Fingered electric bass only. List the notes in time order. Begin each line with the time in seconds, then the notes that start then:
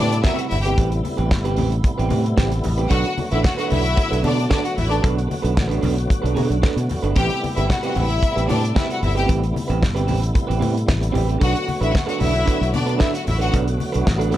0.00 A2
0.52 G1
0.78 A1
1.19 A1
1.31 G1
1.57 A1
1.99 A1
2.11 A2
2.38 A1
2.65 A1
2.91 B1
3.32 A1
3.72 B1
4.12 B1
4.24 B2
4.78 A1
5.04 B1
5.44 B1
5.57 A1
5.83 B1
6.24 B1
6.36 B2
6.50 B1
6.76 B2
7.03 G1
7.16 A1
7.57 G1
7.96 A1
8.37 A1
8.49 A2
9.03 G1
9.30 A1
9.70 A1
9.83 G1
10.09 A1
10.50 A1
10.62 A2
10.89 A1
11.14 A1
11.42 B1
11.81 A1
12.21 B1
12.61 B1
12.75 B2
13.28 A1
13.54 B1
13.95 B1
14.07 A1
14.34 B1